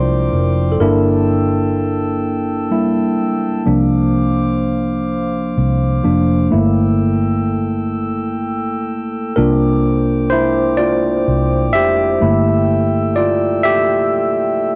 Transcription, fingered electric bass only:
Already playing: C2
0.33 F1
0.81 G1
3.67 C2
5.58 C2
6.05 F1
6.53 G1
9.38 C2
11.28 C2
11.75 F1
12.22 G1

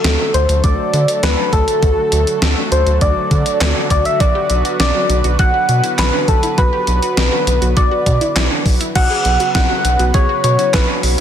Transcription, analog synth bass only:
0.04 D2
0.34 D2
0.49 D2
0.64 D2
0.93 D3
1.23 D2
1.53 D2
1.83 D2
2.12 D2
2.42 D2
2.72 D2
2.87 D2
3.01 D2
3.31 D3
3.61 D2
3.90 D2
4.20 B1
4.50 B1
4.80 B1
5.09 B1
5.24 B1
5.39 B1
5.69 B2
5.98 B1
6.28 B1
6.58 B1
6.88 B1
7.17 B1
7.47 B1
7.62 B1
7.77 B1
8.06 B2
8.36 B1
8.66 B1
8.96 B1
9.25 B1
9.55 B1
9.85 B1
9.99 B1
10.14 B1
10.44 B2
10.74 B1
11.03 B1

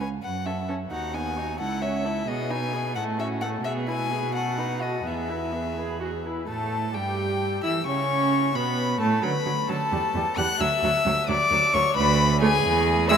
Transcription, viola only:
0.01 C#4
0.45 C#4
0.69 C#4
0.91 D#4
1.14 B3
1.37 D#4
1.60 E4
1.82 C#4
2.05 E4
2.28 B3
2.50 D#4
2.73 B3
2.96 A3
3.18 C#4
3.42 A3
3.65 B3
3.87 E4
4.10 B3
4.33 F#4
4.58 D#4
4.80 F#4
5.05 B3
5.29 E4
5.52 B3
5.77 G#4
6.00 F#4
6.24 E4
6.48 A3
6.94 G3
7.63 E4
7.86 C#4
8.56 B3
9.00 A3
9.22 F#3
9.45 F#3
9.69 F#3
9.92 G3
10.15 G3
10.38 G3
10.60 F#3
10.84 F#3
11.06 F#3
11.28 F#3
11.51 F#3
11.75 F#3
12.41 A3
13.10 G#3

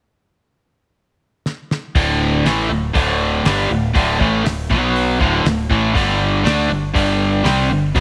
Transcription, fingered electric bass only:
1.95 D1
2.45 A1
2.69 D1
2.96 D1
3.45 G1
3.71 D1
3.96 D1
4.21 A1
4.47 D1
4.71 B1
5.21 D1
5.45 D1
5.71 A1
5.96 G1
6.45 D2
6.70 G1
6.96 G1
7.44 C2
7.70 G1
7.96 B1

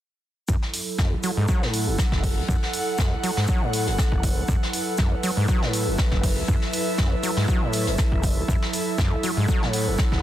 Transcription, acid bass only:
0.49 F#2
0.98 F#2
1.12 F#1
1.23 F#3
1.37 G#2
1.48 F#3
1.62 A2
1.87 F#1
2.12 F#1
2.37 E2
2.48 F#2
2.98 F#2
3.12 F#1
3.23 F#3
3.37 G#2
3.48 F#3
3.62 A2
3.87 F#1
4.12 F#1
4.37 E2
4.48 F#2
4.98 F#2
5.12 F#1
5.23 F#3
5.37 G#2
5.48 F#3
5.62 A2
5.87 F#1
6.12 F#1
6.37 E2
6.48 F#2
6.98 F#2
7.12 F#1
7.23 F#3
7.37 G#2
7.48 F#3
7.62 A2
7.87 F#1
8.12 F#1
8.37 E2
8.48 F#2
8.98 F#2
9.12 F#1
9.23 F#3
9.37 G#2
9.48 F#3
9.62 A2
9.87 F#1
10.12 F#1

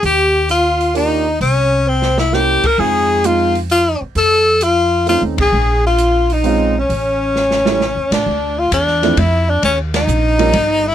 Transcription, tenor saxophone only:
0.05 G4
0.51 F4
0.97 D#4
1.42 C#4
1.88 C4
2.20 E4
2.34 G4
2.66 A#4
2.79 G#4
3.26 F4
3.71 F4
4.18 A4
4.63 F4
5.09 F4
5.42 G#4
5.87 F4
6.33 D#4
6.80 C#4
8.13 D4
8.59 F4
8.74 D4
9.19 E4
9.50 D4
9.65 C#4
9.96 D#4
10.88 E4

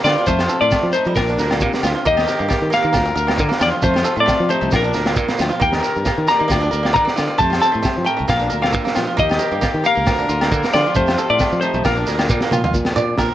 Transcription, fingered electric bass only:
0.04 D3
0.28 F2
0.61 A2
0.83 F3
1.06 F3
1.17 A#1
1.38 D2
1.62 A#2
1.83 D2
2.06 D#2
2.40 G2
2.62 D#3
2.84 D#3
2.96 D2
3.16 D2
3.40 D3
3.61 E2
3.84 F2
4.17 A2
4.40 F3
4.62 C2
4.73 A#1
4.95 D2
5.17 A#2
5.40 D2
5.62 D#2
5.96 G2
6.18 D#3
6.41 D#3
6.51 D2
6.73 D2
6.96 D3
7.19 D3
7.40 F2
7.75 A2
7.98 F3
8.20 C2
8.29 A#1
8.52 D2
8.74 A#2
8.97 A#2
9.19 D#2
9.52 G2
9.74 D#3
9.97 C#2
10.07 D2
10.29 D2
10.52 D3
10.74 D3
10.96 F2
11.30 A2
11.52 F3
11.74 B1
11.86 A#1
12.08 D2
12.30 A#2
12.52 A#2
12.74 A#2
12.96 A#2
13.19 A#2

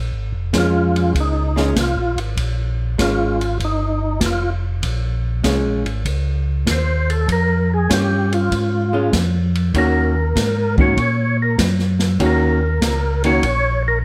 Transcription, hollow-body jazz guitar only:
0.53 G#3 C#4 F4
1.56 G#3 C#4 F4
2.98 G#3 C#4 F4
5.44 G#3 C#4 F4
7.90 C#4 F4
8.93 G#3 C#4 F4
9.74 D#3 A#3 C#4 F#4
10.78 D#3 A#3 C#4 F#4
12.20 D#3 A#3 C#4 F#4
13.24 D#3 A#3 C#4 F#4

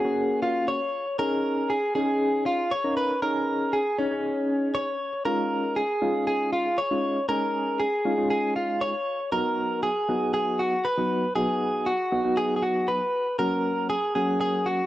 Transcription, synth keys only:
0.04 A#3 C#4 F#4
1.19 C#4 D#4 G#4
1.95 C#4 D#4 G#4
2.84 C#4 D#4 A#4
3.22 C#4 D#4 G#4
3.98 C#4 D#4 G#4
4.11 C#4 D#4 G#4
5.26 G#3 C#4 D#4 F4
6.02 G#3 C#4 D#4 F4
6.91 G#3 C#4 D#4 F4
7.29 G#3 C#4 D#4 G#4
8.05 G#3 C#4 D#4 F4
8.18 G#3 C#4 D#4 F4
9.32 F#3 B3 D#4 F#4
10.09 F#3 B3 D#4 F#4
10.98 F#3 B3 D#4 F#4
11.36 F#3 B3 D#4 F#4
12.12 F#3 B3 D#4 F#4
12.25 F#3 B3 D#4 F#4
13.39 F#3 A#3 C#4 F#4
14.15 F#3 A#3 C#4 F#4

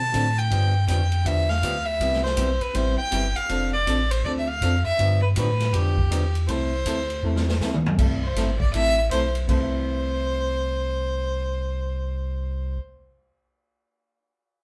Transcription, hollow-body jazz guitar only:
0.12 D3 F3 C4 D4 A4
0.51 D3 F3 B3 D4 G4
0.87 D3 F3 B3 D4 G4
1.24 D3 F3 B3 D4 G4
1.62 D3 F3 B3 D4 G4
2.00 C3 G3 B3 E4 G4
2.36 C3 G3 B3 E4 G4
2.74 C3 G3 B3 E4 G4
3.11 C3 G3 B3 E4 G4
3.49 F3 C4 D4 A4
3.87 F3 C4 D4 A4
4.25 F3 C4 D4 A4
4.62 F3 C4 D4 A4
4.99 D3 F3 B3 D4 G4
5.36 D3 F3 B3 D4 G4
5.74 D3 F3 B3 D4 G4
6.10 D3 F3 B3 D4 G4
6.47 C3 E3 A3 E4 A4
6.86 C3 E3 A3 E4 A4
7.23 C3 E3 A3 E4 A4
7.62 C3 E3 A3 E4 A4
7.99 C3 E3 A3 E4 A4
8.36 C3 E3 A3 E4 A4
8.74 C3 E3 A3 E4 A4
9.11 C3 E3 A3 E4 A4
9.47 C3 E3 A3 E4 A4

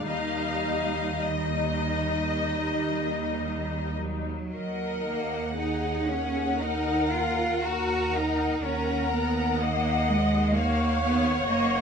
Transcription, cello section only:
0.08 D#3
3.98 F#3
5.06 A#3
5.57 D#4
6.07 C#4
6.59 D#4
7.12 F4
7.63 F#4
8.14 D#4
8.64 C#4
9.12 B3
9.60 A#3
10.08 G#3
10.56 A#3
11.03 B3
11.48 A#3

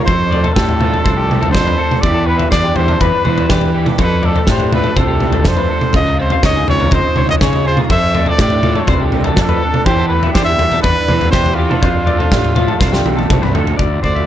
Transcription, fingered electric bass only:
0.08 F2
0.56 A2
1.06 C2
1.55 F2
2.04 E2
2.52 E2
2.77 E2
3.01 E2
3.26 E2
3.50 E3
3.99 F2
4.48 A2
4.97 C2
5.45 F2
5.94 C#2
6.43 C#2
6.69 C#2
6.92 C#2
7.17 C#2
7.42 C#3
7.90 F2
8.39 A2
8.88 C2
9.37 F2
9.87 E2
10.35 E2
10.60 E2
10.84 E2
11.09 E2
11.33 E2
11.83 F2
12.32 A2
12.81 C2
13.05 B1
13.31 C2
13.55 D2
13.79 D2
14.04 D2

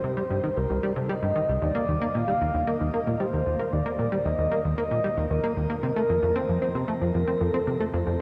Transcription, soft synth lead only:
Already playing: C5
0.57 A#4
0.96 A4
1.09 D#5
1.62 D5
2.15 F5
2.67 D#5
3.20 C5
3.73 D5
4.25 D#5
4.78 D#5
5.31 A#4
5.83 A#4
6.36 C5
6.88 A#4
7.41 A4
7.94 C5

